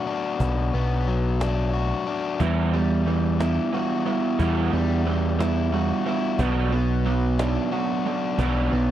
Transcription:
Already playing: overdriven electric guitar F#3 B3 F#4
0.07 overdriven electric guitar D4, cajon slap
0.40 picked electric bass B1, overdriven electric guitar B2, cajon bass
0.73 picked electric bass B1, overdriven electric guitar B3, cajon slap
1.06 overdriven electric guitar F#3, cajon slap
1.40 overdriven electric guitar D4, cajon slap
1.73 overdriven electric guitar F#4, cajon slap
2.06 overdriven electric guitar D4, cajon slap
2.40 overdriven electric guitar E2 G3 B3 E4, picked electric bass E2, cajon bass
2.73 overdriven electric guitar G3 B3, cajon slap
3.07 overdriven electric guitar E3 G3 B3, cajon slap
3.40 overdriven electric guitar G3 B3 E4, cajon slap
3.72 overdriven electric guitar G3 B3 F#4, cajon slap
4.05 overdriven electric guitar G3 B3 E4, cajon slap
4.39 picked electric bass E2, overdriven electric guitar E2 G3 B3 E4, cajon bass
4.72 picked electric bass E2, overdriven electric guitar G3 B3, cajon slap
5.06 overdriven electric guitar E3 G3 B3, cajon slap
5.39 overdriven electric guitar G3 B3 E4, cajon slap
5.73 overdriven electric guitar G3 B3 F#4, cajon slap
6.06 overdriven electric guitar G3 B3 E4, cajon slap
6.39 picked electric bass B1, overdriven electric guitar B2 F#3 B3 D4, cajon bass
6.72 overdriven electric guitar F#3 B3, cajon slap
7.06 overdriven electric guitar F#3 B3, cajon slap
7.39 overdriven electric guitar F#3 B3 D4, cajon slap
7.72 overdriven electric guitar F#3 B3 F#4, cajon slap
8.05 overdriven electric guitar F#3 B3 D4, cajon slap
8.38 picked electric bass B1, overdriven electric guitar B2 F#3 B3 D4, cajon bass
8.72 picked electric bass B1, overdriven electric guitar F#3 B3, cajon slap

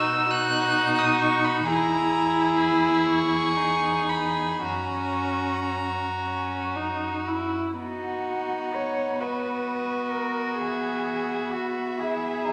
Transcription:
Already playing: cello B2, viola D#4, violin F#4 E6
0.29 viola D#4, violin F#4 F#6
0.99 violin D#6
1.21 violin C#6
1.45 violin B5
1.66 cello E2, viola E4, violin G#4 A#5
2.60 violin B5
3.07 violin C#6
3.56 viola D#4
4.09 violin B5
4.65 cello F#2, viola C#4, violin F#4 A#5
6.24 viola C#4
6.76 viola D#4
7.28 viola E4
7.79 viola B3, violin D#4 F#5, cello F#4
8.75 cello C#5
9.20 violin F#4 D#5, cello B4
10.12 cello A#4
10.58 cello G#4, violin E5
11.53 cello F#4
11.99 violin E4, cello G#4
12.45 violin D#4

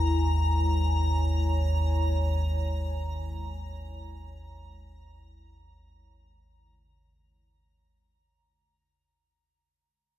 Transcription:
Already playing: synth drone G#1 D#2, analog synth pad G#3 E4 B4 G#5, ambient pad A#5
0.27 analog synth pad C#5
6.61 bronze metallophone C#3

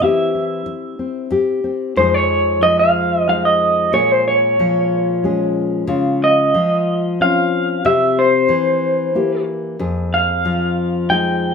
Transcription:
0.00 nylon-string guitar C3 E3 C4 E4 G4, clean electric guitar E5
0.35 nylon-string guitar E4
0.66 nylon-string guitar E3
0.99 nylon-string guitar C4
1.31 nylon-string guitar G2 G4
1.64 nylon-string guitar C4
1.96 nylon-string guitar F2 F3 G#3 D#4 G#4, clean electric guitar C5
2.14 clean electric guitar C#5
2.62 nylon-string guitar F3, clean electric guitar D#5
2.79 clean electric guitar F5
3.28 nylon-string guitar G#3 D#4 G#4, clean electric guitar F5
3.45 clean electric guitar D#5
3.93 nylon-string guitar A#2 G#4, clean electric guitar C#5
4.12 clean electric guitar C5
4.28 clean electric guitar C#5
4.59 nylon-string guitar F3
5.24 nylon-string guitar G#3 C#4 G#4
5.87 nylon-string guitar C#3 F4
6.24 clean electric guitar D#5
6.54 nylon-string guitar F3
7.20 nylon-string guitar C4 C#4 F4, clean electric guitar F5
7.85 nylon-string guitar C3 G4, clean electric guitar E5
8.19 clean electric guitar C5
8.49 nylon-string guitar E3
9.15 nylon-string guitar A#3 E4 G4
9.79 nylon-string guitar F2 G#4
10.14 clean electric guitar F5
10.45 nylon-string guitar F3
11.09 nylon-string guitar G#3 D#4 G#4, clean electric guitar G5

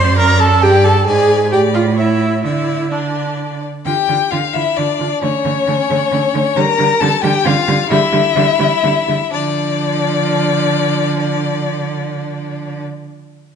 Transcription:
Already playing: cello F#2, viola C5, violin D5 C6
0.18 viola A#4, violin A#5
0.40 viola A4, violin A5
0.62 cello G2, viola G4, violin D5 G5
0.84 viola A4, violin A5
1.06 cello G#2, viola G#4, violin D5 G#5
1.52 cello A2, viola G4, violin D5 G5
1.74 viola F4, violin F5
1.97 viola E4, violin C#5 E5
2.44 cello D3, viola E4, violin D5 E5
2.91 viola D4, violin D5
3.85 cello D3, viola F4, violin G4 G5
4.08 cello D3, viola F4
4.31 cello D3, violin F4 F5, viola F4
4.53 cello D3, violin E4 E5, viola F4
4.77 cello D3, violin D4 D5, viola F4
4.99 cello D3, viola F4
5.22 cello D3, viola A3, violin C#4 C#5
5.45 cello D3, viola A3
5.67 cello D3, viola A3
5.90 cello D3, viola A3
6.11 cello D3, viola A3
6.34 cello D3, viola A3
6.56 cello D3, viola G3, violin A#4 A#5
6.79 cello D3, viola G3
7.00 cello D3, viola G3, violin A4 A5
7.22 cello D3, viola G3, violin G4 G5
7.45 cello D3, viola G3, violin F4 F5
7.68 cello D3, viola G3
7.89 cello D3, viola G3, violin E4 E5
8.12 cello D3, viola G3
8.36 cello D3, viola G3
8.59 cello D3, viola G3
8.83 cello D3, viola G3
9.08 cello D3, viola G3
9.32 cello D3, viola F3, violin D4 D5

